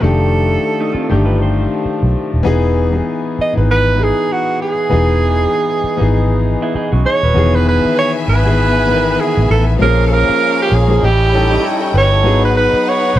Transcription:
0.00 fingered electric bass F1, grand piano D#3 A3 D4 G4, french horn section F3 A3, alto saxophone A4
0.80 clean electric guitar A3 D#4
0.93 clean electric guitar C4 F4, muted fingered electric bass stroke
1.10 fingered electric bass G1, grand piano D#3 A3 D4 G4, clean electric guitar D4 G4
1.25 clean electric guitar F4 B4
1.42 clean electric guitar G4 C5
1.85 muted fingered electric bass stroke
2.03 fingered electric bass B1
2.34 fingered electric bass D#1
2.43 fingered electric bass E1, grand piano E3 B3 D#4 G#4, french horn section E3 B3 G#4
2.91 grand piano E3 B3 D#4
2.96 grand piano G#4
3.39 alto saxophone D#5, muted fingered electric bass stroke
3.53 grand piano E3 B3 D#4
3.57 fingered electric bass G#1, grand piano B4
3.71 alto saxophone B4
3.96 grand piano E3 B3 D#4 G#4
4.03 alto saxophone G#4
4.32 alto saxophone F#4
4.62 alto saxophone G#4
4.89 fingered electric bass E1, grand piano E3 B3 D#4 G#4, french horn section D#4
5.84 muted fingered electric bass stroke
5.97 fingered electric bass G#1, grand piano E3 B3 D#4 G#4
6.62 clean electric guitar B3 E4
6.75 clean electric guitar D#4 G#4, muted fingered electric bass stroke
6.92 fingered electric bass B1, clean electric guitar C#4 F#4
7.05 clean electric guitar D#4 G#4, alto saxophone C#5
7.23 fingered electric bass D#1, clean electric guitar F#4 B4
7.34 fingered electric bass E1, french horn section B2 B3 B4, grand piano D#3 E3 B3 G#4, string section B3 E5 G#5
7.55 alto saxophone B4
7.68 alto saxophone B4
7.85 muted fingered electric bass stroke
7.98 alto saxophone C#5
8.28 fingered electric bass G#1, alto saxophone B4
8.43 grand piano D#3 E3 B3 G#4
8.86 grand piano D#3 E3 B3 A#4
8.96 grand piano B4
9.20 alto saxophone G#4
9.37 fingered electric bass A1
9.50 fingered electric bass A1, alto saxophone A4
9.79 fingered electric bass A#1, grand piano F3 A#3 C#4 G#4, french horn section G#3 A#3 C#4, string section C#4 A#4 F5, alto saxophone A#4
10.07 alto saxophone A4
10.13 alto saxophone A#4
10.29 muted fingered electric bass stroke
10.62 alto saxophone G4
10.72 fingered electric bass A#1, alto saxophone G#4
10.88 grand piano F3 A#3 C#4 G#4
11.01 fingered electric bass A1, french horn section G3 A3 C#4, string section E4 D#5 G5, alto saxophone G4
11.32 grand piano G3 C#4 D#4 A4
11.51 clean electric guitar C#4 G4
11.64 clean electric guitar E4 A4
11.81 clean electric guitar G4 C#5
11.94 fingered electric bass G1, clean electric guitar F#4 B4, alto saxophone C#5
12.13 clean electric guitar E4 A4
12.23 fingered electric bass G#1, grand piano F#3 B3 D#4 G#4, french horn section F#3 D#4 F#4 B4, string section D#4 B4 F#5
12.45 alto saxophone B4
12.57 alto saxophone B4
12.73 muted fingered electric bass stroke
12.89 alto saxophone C#5
13.16 fingered electric bass B1

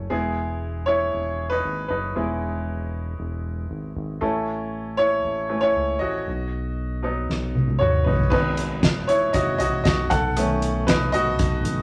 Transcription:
Already playing: upright piano A3 C#4 E4 A4 C#5
0.10 analog synth bass E1, upright piano G#3 B3 E4 G#4
0.86 upright piano E4 C#5
1.13 analog synth bass E1
1.50 upright piano D#4 B4
1.64 analog synth bass G#1
1.88 analog synth bass F#1, upright piano D#4 B4
2.15 analog synth bass E1, upright piano G#3 B3 E4
3.19 analog synth bass E1
3.70 analog synth bass G#1
3.96 analog synth bass G#1
4.21 analog synth bass A1, upright piano A3 C#4 E4 A4
4.97 upright piano E4 C#5
5.24 analog synth bass A1
5.49 upright piano A3 C#4 E4
5.61 upright piano E4 C#5
5.76 analog synth bass C#2
5.99 analog synth bass A1, upright piano F#4 D#5
6.27 analog synth bass B1
7.03 upright piano F#3 B3 D#4
7.29 analog synth bass B1, snare
7.55 high tom
7.68 high tom
7.79 analog synth bass D#2, upright piano F#4 C#5, mid tom
8.04 analog synth bass F#1, upright piano D#4 B4, floor tom
8.19 floor tom
8.30 analog synth bass G#1, upright piano D#3 F#3 B3 D#4 B4, kick, crash
8.57 closed hi-hat
8.83 kick, snare, closed hi-hat
9.07 upright piano E4 C#5, closed hi-hat
9.33 analog synth bass G#1, upright piano F#4 D#5, kick, closed hi-hat
9.58 upright piano F#4 D#5, closed hi-hat, floor tom
9.84 analog synth bass B1, upright piano F#4 D#5, kick, snare, closed hi-hat
10.10 analog synth bass B1, upright piano A4 F#5, kick, closed hi-hat
10.36 upright piano D#3 A3 C#4, closed hi-hat
10.62 closed hi-hat
10.87 upright piano D#4 B4, kick, snare, closed hi-hat
11.12 upright piano F#4 D#5, closed hi-hat, floor tom
11.39 analog synth bass B1, kick, closed hi-hat
11.65 closed hi-hat, floor tom

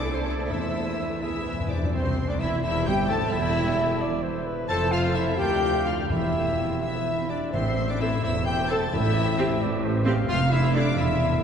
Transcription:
Already playing: double bass section C2, viola section A3 E4, french horn section D4, cello section A4, violin section A4 C5 D6, flute D5, oboe D5
0.14 french horn section C4, flute C5, oboe C5, violin section C6
0.24 french horn section D4, flute D5, oboe D5, violin section D6
0.49 timpani E2, double bass section E2, cello section E4, french horn section E4, flute E5, oboe E5, violin section E6
1.22 timpani E2, viola section B3, french horn section E4, trumpet E4, clarinet G#4, violin section G#4 B4 E5 E6, flute E5
1.30 timpani E2
1.38 timpani E2
1.45 timpani E2, clarinet B4
1.53 timpani E2
1.60 timpani E2
1.67 timpani E2, trumpet D4, french horn section D4, clarinet C5, flute D5, violin section D6
1.71 violin section D5
1.76 timpani E2
1.83 timpani E2
1.93 cello section C2, double bass section C2, trumpet C4, french horn section C4, viola section C4, flute C5, violin section C5 C6
2.27 cello section D2, trumpet D4, viola section D4, french horn section D4, flute D5, violin section D5 D6
2.39 double bass section E1, cello section E2, trumpet E4, viola section E4, french horn section E4, flute E5, violin section E5 E6
2.63 double bass section E1, cello section E2, trumpet E4, viola section E4, french horn section E4, clarinet C5, flute E5, violin section E5 E6
2.86 double bass section G1, cello section G2, trumpet G4, viola section G4, french horn section G4, flute G5, violin section G5 G6
3.09 double bass section A1, cello section A2, trumpet A4, viola section A4, french horn section A4, violin section A5 A6, flute A5
3.31 double bass section E1, cello section E2, viola section E4, trumpet E4, french horn section E4, violin section E5 E6, clarinet E5, flute E5
4.01 clarinet D5
4.23 clarinet C5
4.47 clarinet B4
4.69 double bass section F1, cello section F2, viola section F4 C5, trumpet A4, french horn section A4, clarinet C5, violin section A5 A6, flute A5
4.81 viola section E4 A4
4.91 french horn section F4, viola section F4 C5, trumpet F4, flute F5, violin section F5 F6
5.04 viola section E4 A4
5.15 french horn section E4, trumpet E4, viola section F4 C5, violin section E5 E6, flute E5
5.27 viola section E4 A4
5.36 cello section D2, double bass section D2, viola section F4 A#4, french horn section G4, trumpet G4, clarinet F5, violin section G5 G6, flute G5
5.51 viola section D4 D5
5.62 viola section F4 A#4
5.73 viola section D4 D5
5.84 french horn section F4, trumpet F4, viola section F4 A#4, flute F5, violin section F5 F6
5.97 viola section D4 D5
6.08 double bass section E1, cello section E2, timpani E2, viola section A3 A4, french horn section E4, trumpet E4, flute E5, clarinet E5, violin section E5 E6
6.21 viola section C4 C5
6.34 viola section A3 A4
6.45 viola section C4 C5
6.58 viola section A3 A4
6.70 viola section C4 C5
6.80 viola section B3, french horn section E4, trumpet E4, flute E5, violin section E5 E6
7.20 viola section C4
7.28 french horn section D4, trumpet D4, viola section D4, violin section D5 D6, flute D5
7.52 double bass section A1, cello section A2, timpani A2, french horn section C4, trumpet C4, violin section C5 C6, flute C5, clarinet E5
7.88 french horn section D4, trumpet D4, flute D5, violin section D5 D6
8.00 viola section C4 A4, french horn section E4, trumpet E4, flute E5, violin section E5 E6
8.22 double bass section E1, cello section E2, french horn section E4, trumpet E4, clarinet C5, flute E5, violin section E5 E6
8.46 french horn section G4, trumpet G4, flute G5, violin section G5 G6
8.68 viola section C4 A4, trumpet A4, french horn section A4, violin section A5 A6, flute A5
8.92 double bass section A1, cello section A2, timpani A2, trumpet E4, french horn section E4, violin section E5 E6, flute E5, clarinet E5
9.37 viola section C4 G4
9.61 double bass section A1, cello section A2, clarinet D5
9.85 clarinet C5
10.06 viola section C4 G4, clarinet F5
10.29 double bass section F1, cello section F2, trumpet F4, french horn section F4, violin section F5 F6, flute F5
10.51 trumpet E4, french horn section E4, violin section E5 E6, flute E5
10.74 trumpet D4, french horn section D4, viola section E4 A4, violin section D5 D6, flute D5
10.97 double bass section E1, cello section E2, french horn section E4, trumpet E4, clarinet E5, violin section E5 E6, flute E5

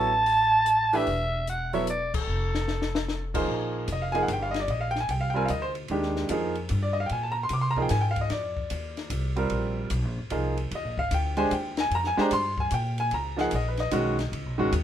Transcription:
Already playing: upright bass A1, grand piano B3 E4 A4 C#5, soprano saxophone A5
0.26 open hi-hat
0.66 closed hi-hat
0.93 grand piano E3 A3 D4 G4 B4, soprano saxophone E5, open hi-hat
1.07 upright bass E1, open hi-hat
1.47 soprano saxophone F#5, closed hi-hat
1.73 grand piano F#3 B3 E4 A4 C#5, soprano saxophone E5, open hi-hat
1.87 soprano saxophone D5, closed hi-hat
2.14 soprano saxophone A4, kick, crash
2.27 upright bass F1
2.55 snare
2.68 snare
2.82 snare
2.95 snare
3.08 snare
3.34 grand piano F3 A#3 D#4 G#4 C5, kick, crash
3.48 upright bass A#1
3.88 upright bass F1, hi-hat pedal, ride
3.92 grand piano D#5
4.02 grand piano F5
4.12 grand piano F3 A#3 D#4 G#4 G#5, ride
4.23 grand piano F#5
4.28 upright bass G1, hi-hat pedal, ride
4.33 grand piano G5
4.42 grand piano F5
4.51 grand piano D#5, snare, ride
4.60 grand piano D5
4.68 upright bass A#1, grand piano D#5, ride
4.81 grand piano F5
4.91 grand piano G5
4.96 snare
5.00 grand piano G#5
5.09 upright bass C2, grand piano G5, ride
5.21 grand piano F5
5.30 grand piano G3 G5
5.35 grand piano C4 F4 A#4 G#5
5.45 upright bass D2, grand piano F5, hi-hat pedal, ride
5.50 grand piano D#5
5.62 grand piano C5
5.75 ride
5.88 upright bass D#2, grand piano D#3 G#3 D4 G4, ride
6.03 snare
6.16 snare
6.29 upright bass F2, grand piano F3 A#3 D#4 G#4, hi-hat pedal, ride
6.55 ride
6.69 upright bass G2, hi-hat pedal, ride
6.83 grand piano D5
6.93 grand piano D#5
7.00 grand piano F5
7.06 grand piano G5, ride
7.11 upright bass A#2, grand piano G#5
7.23 grand piano A5
7.32 grand piano A#5
7.43 grand piano C6
7.49 upright bass C3, hi-hat pedal, ride
7.53 grand piano D6
7.61 grand piano C6
7.71 grand piano A#5
7.76 grand piano F3 A#3 D#4 G#4, kick
7.82 grand piano G5
7.89 upright bass G#2, grand piano G#5, snare, hi-hat pedal, ride
8.01 grand piano G5
8.11 grand piano F5
8.16 kick, ride
8.21 grand piano D#5
8.30 upright bass F2, grand piano D5, snare, ride
8.57 kick
8.70 upright bass D#2, hi-hat pedal, ride
8.97 snare, ride
9.10 upright bass C2, hi-hat pedal, ride
9.36 grand piano G3 C4 F4 A#4, ride
9.50 upright bass A#1, ride
9.90 upright bass B1, hi-hat pedal, ride
10.04 upright bass A#1
10.18 upright bass G#1
10.30 upright bass C2, grand piano F3 A#3 D#4 G#4, ride
10.57 ride
10.71 upright bass D#2, ride
10.75 grand piano D#5
10.84 upright bass A#1
10.97 upright bass G#1, grand piano F5, kick
11.11 upright bass D2, grand piano G5, hi-hat pedal, ride
11.37 grand piano G#3 D4 G4 C5 G#5, ride
11.51 upright bass D#2, grand piano G5, hi-hat pedal, ride
11.77 grand piano G#5, snare, ride
11.91 upright bass F2, ride
11.95 grand piano A#5
12.04 grand piano G#5, snare
12.17 grand piano G#3 D4 G4 C5, muted upright bass stroke, snare
12.21 grand piano A#5
12.31 upright bass G2, grand piano C6, hi-hat pedal, ride
12.58 grand piano G#5, kick
12.71 upright bass A#2, grand piano G5, hi-hat pedal, ride
12.98 grand piano G#5, ride
13.11 upright bass C#2, grand piano A#5, ride
13.37 grand piano F3 A#3 D#4 G#4, snare
13.41 grand piano F#5
13.51 upright bass A#1, hi-hat pedal, ride
13.55 grand piano D#5
13.68 grand piano B4
13.77 grand piano D#5, snare, ride
13.91 upright bass B1, grand piano D#3 G#3 C#4 F#4, hi-hat pedal, ride
14.19 snare, ride
14.32 upright bass C#2, ride
14.46 upright bass B1
14.58 upright bass G#1, grand piano D#3 G#3 C#4 F#4
14.72 upright bass D#2, hi-hat pedal, ride

